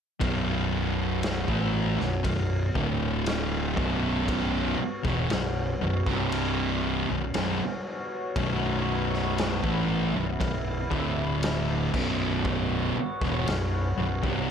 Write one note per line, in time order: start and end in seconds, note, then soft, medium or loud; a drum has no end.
0.20 1.45 B0 medium
0.20 1.46 B1 medium
0.20 1.47 F#2 loud
0.20 1.47 B2 loud
0.20 2.74 B3 medium
0.20 2.73 F#4 medium
0.20 2.73 C#5 medium
0.20 kick loud
0.20 ride bell medium
1.23 snare loud
1.23 ride bell medium
1.48 1.96 A1 medium
1.48 1.97 A2 medium
1.48 1.98 E3 medium
1.48 1.98 A3 medium
1.48 kick loud
1.98 2.23 B0 medium
1.98 2.22 B1 medium
1.98 2.23 F#2 medium
1.98 snare soft
2.23 2.72 B0 medium
2.23 2.65 B1 medium
2.23 2.65 F#2 medium
2.23 kick medium
2.23 ride bell medium
2.75 3.74 D1 medium
2.75 3.75 D2 loud
2.75 3.75 A2 loud
2.75 3.77 D3 medium
2.75 3.76 D3 loud
2.75 3.77 A3 medium
2.75 3.77 E4 medium
2.75 kick loud
3.26 snare loud
3.26 ride bell medium
3.75 4.76 B0 loud
3.75 4.77 B1 medium
3.75 4.77 F#2 loud
3.75 4.78 B2 loud
3.75 6.05 B3 medium
3.75 6.05 F#4 medium
3.75 6.05 C#5 medium
3.75 kick loud
4.28 kick loud
4.28 ride bell medium
4.78 muted distorted electric guitar stroke medium
4.78 muted fingered electric bass stroke soft
5.03 5.29 E1 medium
5.03 5.28 E2 medium
5.03 5.28 B2 loud
5.03 kick loud
5.03 snare soft
5.29 5.78 B0 medium
5.29 5.71 B1 medium
5.29 5.71 F#2 medium
5.29 snare loud
5.29 ride bell medium
5.81 6.05 B0 medium
5.81 6.06 B1 medium
5.81 6.07 F#2 medium
6.06 7.05 C1 medium
6.06 7.07 C2 medium
6.06 7.08 G2 loud
6.06 7.08 C3 medium
6.06 7.08 C3 loud
6.06 7.08 G3 medium
6.06 7.08 D4 medium
6.06 kick loud
6.06 snare soft
6.32 ride bell medium
7.08 7.33 B0 medium
7.08 7.33 B1 medium
7.08 7.33 F#2 medium
7.08 10.88 B3 medium
7.08 9.12 F#4 medium
7.08 10.88 C#5 medium
7.34 7.58 B0 medium
7.34 7.59 B1 medium
7.34 7.59 F#2 loud
7.34 snare loud
7.34 ride bell medium
8.36 9.60 B0 loud
8.36 9.63 B1 loud
8.36 9.63 F#2 loud
8.36 9.63 B2 loud
8.36 kick loud
8.36 ride bell medium
9.14 11.92 E4 medium
9.14 snare soft
9.38 snare loud
9.38 ride bell medium
9.63 10.11 A1 loud
9.63 10.14 A2 medium
9.63 10.14 E3 loud
9.63 10.14 A3 loud
9.63 kick loud
10.14 10.39 B0 medium
10.14 10.39 B1 medium
10.14 10.39 F#2 medium
10.40 10.88 B0 medium
10.40 10.81 B1 medium
10.40 10.81 F#2 medium
10.40 kick loud
10.40 ride bell medium
10.90 11.90 D1 loud
10.90 11.92 D2 medium
10.90 11.92 A2 medium
10.90 11.92 D3 loud
10.90 11.93 D3 medium
10.90 11.93 A3 medium
10.90 kick medium
11.43 snare loud
11.43 ride bell medium
11.93 12.92 B0 medium
11.93 12.94 B1 loud
11.93 12.94 F#2 loud
11.93 12.94 B2 loud
11.93 14.21 B3 medium
11.93 14.22 F#4 medium
11.93 14.21 C#5 medium
11.93 kick loud
11.93 crash loud
12.45 kick loud
12.96 muted fingered electric bass stroke soft
12.96 muted distorted electric guitar stroke medium
13.21 13.45 E1 medium
13.21 13.45 E2 medium
13.21 13.46 B2 medium
13.21 kick loud
13.21 snare soft
13.47 13.94 B0 medium
13.47 13.88 B1 medium
13.47 13.88 F#2 medium
13.47 snare loud
13.47 ride bell medium
13.97 14.21 B0 medium
13.97 14.22 B1 medium
13.97 14.22 F#2 medium
14.23 14.51 C1 medium
14.23 14.51 C2 medium
14.23 14.51 G2 loud
14.23 14.51 C3 loud
14.23 14.51 C3 medium
14.23 14.51 G3 medium
14.23 14.51 D4 medium
14.23 kick loud